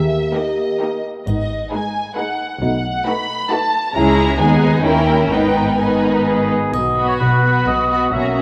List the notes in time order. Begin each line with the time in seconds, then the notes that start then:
Already playing: D#2 A#3 G4 E5
0.33 A#3 D#4 G4 A#4 D#5
0.81 A#3 D#4 G4 A#4
1.26 G#1 G#2 B3 D#4 D#5, triangle
1.72 G#3 D#4 G#4 B4 G#5
2.16 G#3 D#4 G#4 B4 F#5
2.61 B1 B2 A3 D#4 F#5
3.07 A3 D#4 F#4 B4 B5
3.51 A3 D#4 F#4 B4 A5
3.94 C#2 G#3 C#4 E4 G#4 A#5
4.38 D#2 G#3 B3 D#4 G#4 G#5
4.84 D#2 D#3 C#4 E4 A#4 G5
5.30 G#1 G#2 D#3 B3 D#4 B4 G5
5.78 D#3 B3 D#4 B4 G#5
6.26 G#4
6.73 B1 B2 B3 F#4 D#5, triangle
6.97 B3 F#4 B5
7.09 C#5
7.20 B1 B2 B4
7.43 B3 F#4 B5
7.66 B1 B2 D#5
7.90 B3 F#4 B5
8.12 B1 B2 A#3 C#4 F#4 E5 A#5
8.36 C#4 F#4 A#5